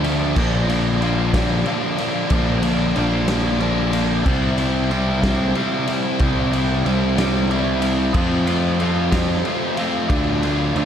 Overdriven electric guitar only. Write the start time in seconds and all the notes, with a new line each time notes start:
Already playing: D3
0.04 F3 A3 D4
0.35 A#2 D3 F3 A#3 D4
0.67 F3 A#3 D4
1.00 D3 F3 A#3 D4
1.33 F3 A#3 D4
1.65 D3 F3 A#3 D4
1.98 F3 A#3 D4
2.32 A#2 D3 F3 A#3 D4
2.62 F3 A#3 D4
2.95 D3 F3 A#3 D4
3.28 F3 A#3 D4
3.60 D3 F3 A#3 D4
3.92 F3 A#3 D4
4.24 C3 G3 C4 E4
4.58 G3 C4 E4
4.90 C3 G3 C4 E4
5.22 G3 C4 E4
5.55 C3 G3 C4 E4
5.88 G3 C4 E4
6.21 C3 G3 C4 E4
6.52 G3 C4 E4
6.84 C3 G3 C4 E4
7.16 G3 C4 E4
7.49 C3 G3 C4 E4
7.81 G3 C4 E4
8.13 F3 A3 C4 F4
8.46 A3 C4 F4
8.79 F3 A3 C4 F4
9.11 A3 C4 F4
9.45 F3 A3 C4 F4
9.78 A3 C4 F4
10.08 D3 A3 D4 F4
10.42 A3 D4 F4
10.76 D3 A3 D4 F4